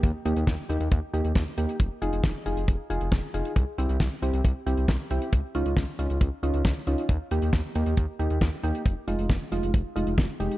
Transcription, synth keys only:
\new Staff \with { instrumentName = "Synth keys" } { \time 4/4 \key f \minor \tempo 4 = 136 r8 <bes ees' g'>8 r8 <bes ees' g'>8 r8 <bes ees' g'>8 r8 <bes ees' g'>8 | r8 <ees' f' aes'>8 r8 <ees' f' aes'>8 r8 <ees' f' aes'>8 r8 <ees' f' aes'>8 | r8 <c' e' g'>8 r8 <c' e' g'>8 r8 <c' e' g'>8 r8 <c' e' g'>8 | r8 <des' ees' f'>8 r8 <des' ees' f'>8 r8 <des' ees' f'>8 r8 <des' ees' f'>8 |
r8 <bes ees' g'>8 r8 <bes ees' g'>8 r8 <bes ees' g'>8 r8 <bes ees' g'>8 | r8 <aes ees' f'>8 r8 <aes ees' f'>8 r8 <aes ees' f'>8 r8 <aes ees' g'>8 | }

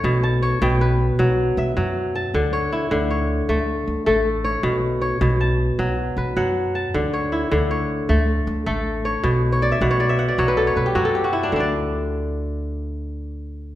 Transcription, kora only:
<<
  \new Staff \with { instrumentName = "Kora" } { \time 12/8 \key b \minor \tempo 4. = 105 cis''8 a''8 cis''8 g''8 b'4. r8 e''4. a''8~ | a''8 cis''8 e'4 cis''4. r4 a'4 cis''8~ | cis''8 r8 cis''4 a''4. r8 b'8 fis''4 a''8~ | a''8 cis''8 e'4 cis''4. r4 a'4 cis''8~ |
cis''8 r16 cis''16 d''16 e''16 fis''16 cis''16 d''16 e''16 fis''16 d''16 cis''16 b'16 a'16 cis''16 b'16 g'16 fis'16 a'16 g'16 fis'16 e'16 d'16~ | d'16 r1 r4. r16 | }
  \new Staff \with { instrumentName = "Kora" } { \clef bass \time 12/8 \key b \minor b,4 r8 b,4 r8 fis4 r8 fis4 r8 | d4 r8 d4 r8 a4 r8 a4 r8 | b,4 r8 b,4 r8 fis4 r8 fis4 r8 | d4 r8 d4 r8 a4 r8 a4 r8 |
b,4 r8 b,4 r8 fis4 r8 fis4 r8 | <d d' d''>1. | }
>>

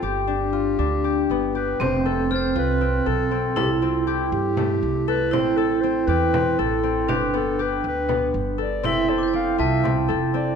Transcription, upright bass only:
\new Staff \with { instrumentName = "Upright bass" } { \clef bass \time 7/8 \key f \lydian \tempo 4 = 119 g,,4. d,4 g,,4 | f,,4. c,4 b,,4 | c,4. g,4 c,4 | a,,4. e,4 a,,4 |
g,,4. d,4 g,,4 | f,,4. c,4 f,,4 | }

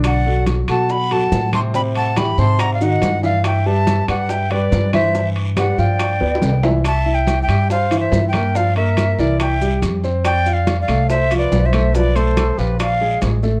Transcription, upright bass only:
\new Staff \with { instrumentName = "Upright bass" } { \clef bass \time 4/4 \key g \major \tempo 4 = 141 b,,4. b,4. a,4~ | a,4. aes,4. g,4~ | g,4. g,4. g,4~ | g,4. g,4 d,8 c,4~ |
\key c \major c,4. g,4. g,4~ | g,4. c,4. f,4~ | f,4. c,4. b,,4~ | b,,4. bes,,4. a,,4 | }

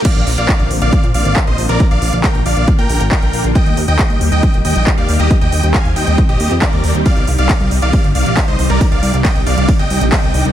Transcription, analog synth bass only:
\new Staff \with { instrumentName = "Analog synth bass" } { \clef bass \time 4/4 \key bes \mixolydian \tempo 4 = 137 r16 bes,,16 bes,,16 bes,,16 r16 bes,,16 bes,,16 bes,,16 r16 bes,16 bes,,16 aes,,16 r16 bes,,16 bes,,16 bes,,16 | r16 bes,,16 bes,,16 bes,,16 r16 bes,,16 bes,,16 bes,,16 r16 bes,16 bes,,16 aes,,16 r16 bes,,16 bes,,16 bes,,16 | r16 ees,16 ees,16 ees,16 r16 ees,16 ees,16 ees,16 r16 ees,,16 ees,16 bes,,16 r16 ees,16 ees,16 ees,16 | r16 ees,16 ees,16 ees,16 r16 ees,16 ees,16 ees,16 r16 ees,,16 ees,16 f,16 r16 ees,16 ees,16 ees,16 |
r16 c,16 c,16 c,16 r16 c,16 c,16 c,16 r16 g,,16 c,16 bes,,16 r16 c,16 c,16 c,16 | r16 c,16 c,16 c,16 r16 c,16 c,16 c,16 r16 g,,16 c,16 bes,,16 r16 c,16 c,16 c,16 | }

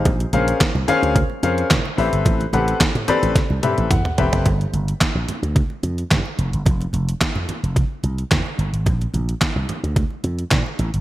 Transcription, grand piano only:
\new Staff \with { instrumentName = "Grand piano" } { \time 4/4 \key bes \lydian \tempo 4 = 109 r8 <des' aes' bes' c'' f''>8 r8 <des' aes' bes' c'' f''>8 r8 <des' aes' bes' c'' f''>8 r8 <c' g' a' b' e''>8~ | <c' g' a' b' e''>8 <c' g' a' b' fis''>8 r8 <c' g' a' b' d''>8 r8 <c' g' a' b' e'' b''>8 fis''8 <c' g' a' b' e'' g''>8 | r1 | r1 |
r1 | }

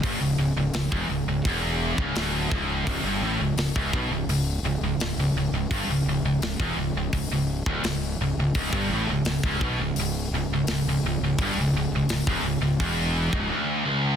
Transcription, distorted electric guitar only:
\new Staff \with { instrumentName = "Distorted electric guitar" } { \clef bass \time 4/4 \key cis \phrygian \tempo 4 = 85 g,16 cis,16 cis,16 cis,16 cis,16 e,16 cis,16 cis,16 e,8. cis,16 d,8 cis,8 | cis,16 g,16 a,16 cis,16 cis,16 cis,16 b,16 cis,16 cis,8 cis,16 cis,16 cis,16 cis,16 cis,16 cis,16 | g,16 cis,16 cis,16 cis,16 cis,16 e,16 cis,16 cis,16 cis,16 cis,8 d,16 cis,8 cis,16 cis,16 | cis,16 g,16 a,16 cis,16 cis,16 cis,16 b,16 cis,16 cis,8 cis,16 cis,16 cis,16 cis,16 cis,16 cis,16 |
g,16 cis,16 cis,16 cis,16 cis,16 e,16 cis,16 cis,16 e,8. cis,16 d,8 cis,8 | }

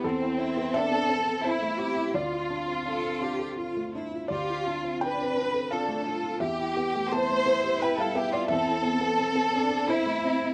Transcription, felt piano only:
\new Staff \with { instrumentName = "Felt piano" } { \time 3/4 \key d \dorian \tempo 4 = 85 << { a'4 e''4 c''4 | d''2~ d''8 r8 | d''4 g''4 f''4 | e''4 a''4 g''16 f''16 e''16 d''16 |
e''2 c''4 | } \\ { e,16 e'16 c'16 b16 c'16 b16 c'16 a'16 e'16 a16 c'16 e'16 | d,16 f'16 d'16 c'16 d'16 c'16 d'16 a'16 f'16 a16 d'16 f'16 | d,16 f'16 d'16 c'16 d'16 c'16 d'16 a'16 f'16 a16 d'16 f'16 | e,16 e'16 b16 a16 b16 a16 b16 g'16 e'16 g16 b16 e'16 |
e,16 e'16 c'16 b16 c'16 b16 c'16 a'16 e'16 a16 c'16 e'16 | } >> }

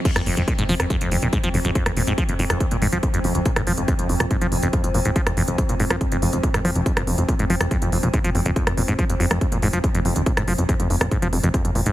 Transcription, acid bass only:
\new Staff \with { instrumentName = "Acid bass" } { \clef bass \time 4/4 \key f \minor \tempo 4 = 141 f,16 f,16 f,16 f,16 bes,16 aes,16 f16 f,16 f,16 f,16 f,16 bes,16 aes,16 f16 f,16 f,16 | f,16 f,16 bes,16 aes,16 f16 f,16 f,16 f,16 f,16 bes,16 aes,16 f16 f,16 f,16 f,16 f,16 | bes,16 aes,16 f16 f,16 f,16 f,16 f,16 bes,16 aes,16 f16 f,16 f,16 f,16 f,16 bes,16 aes,16 | f16 f,16 f,16 f,16 f,16 bes,16 aes,16 f16 f,16 f,16 f,16 f,16 bes,16 aes,16 f16 f,16 |
f,16 f,16 f,16 f,16 bes,16 aes,16 f16 f,16 f,16 f,16 f,16 bes,16 aes,16 f16 f,16 f,16 | f,16 f,16 bes,16 aes,16 f16 f,16 f,16 f,16 f,16 bes,16 aes,16 f16 f,16 f,16 f,16 f,16 | bes,16 aes,16 f16 f,16 f,16 f,16 f,16 bes,16 aes,16 f16 f,16 f,16 f,16 f,16 bes,16 aes,16 | }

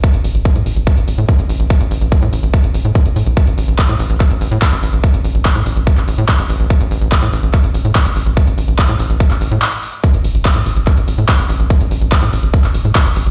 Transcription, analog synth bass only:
\new Staff \with { instrumentName = "Analog synth bass" } { \clef bass \time 4/4 \key bes \lydian \tempo 4 = 144 r16 a,,16 a,,16 a,,16 r16 a,16 a,,16 a,,16 r16 a,,16 a,,16 a,16 r16 a,,16 a,,16 a,,16 | r16 a,,16 a,,16 a,,16 r16 a,16 a,,16 a,,16 r16 a,,16 a,,16 a,16 r16 a,,16 a,16 bes,,16 | r16 a,,16 a,,16 a,,16 r16 a,16 a,,16 a,,16 r16 a,,16 a,,16 a,16 r16 a,,16 a,,16 a,,16 | r16 a,,16 a,,16 a,,16 r16 a,16 a,,16 a,,16 r16 a,,16 a,,16 a,16 r16 a,,16 a,,16 a,,16 |
r16 a,,16 a,,16 a,,16 r16 a,16 a,,16 a,,16 r16 a,,16 a,,16 a,16 r16 a,,16 a,,16 a,,16 | r16 a,,16 a,,16 a,,16 r16 a,16 a,,16 a,,16 r16 a,,16 a,,16 a,16 r4 | r16 a,,16 a,,16 a,,16 r16 a,16 a,,16 a,,16 r16 a,,16 a,,16 a,16 r16 a,,16 a,,16 a,,16 | r16 a,,16 a,,16 a,,16 r16 a,16 a,,16 a,,16 r16 a,,16 a,,16 a,16 r16 a,,16 a,,16 a,,16 | }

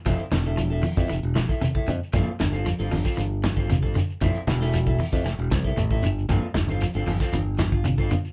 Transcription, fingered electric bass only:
\new Staff \with { instrumentName = "Fingered electric bass" } { \clef bass \time 4/4 \key f \major \tempo 4 = 116 f,,16 r16 e,,4~ e,,16 f,16 f,,16 e,,8 r8. f,16 r16 | g,,16 r16 g,,8. g,,16 g,,16 r16 g,,2 | f,,16 r16 e,,4~ e,,16 f,16 f,,16 e,,16 c,8 a,,8 g,,8 | g,,16 r16 g,,8. g,,16 g,,16 r16 g,,2 | }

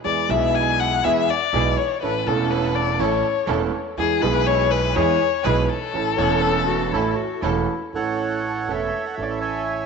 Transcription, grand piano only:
\new Staff \with { instrumentName = "Grand piano" } { \clef bass \time 4/4 \key a \major \tempo 4 = 122 <e, e gis b gis'>8 <b,, b, e gis b gis'>4. <e, e gis b gis'>8 r8 <b,, b, e gis b gis'>8 r8 | <a,, a, e a cis' a'>8 <e,, e, e a cis' a'>4. <a,, a, e a cis' a'>8 r8 <e,, e, e a cis' a'>8 r8 | <e, e gis b gis'>8 <b,, b, e gis b gis'>4. <e, e gis b gis'>8 r8 <b,, b, e gis b gis'>8 r8 | <a,, a, e a cis' a'>8 <e,, e, e a cis' a'>4. <a,, a, e a cis' a'>8 r8 <e,, e, e a cis' a'>8 r8 |
<a,, a, e a cis' a'>4. <e,, e, e a cis' a'>8 r8 <a,, a, e a cis' a'>4. | }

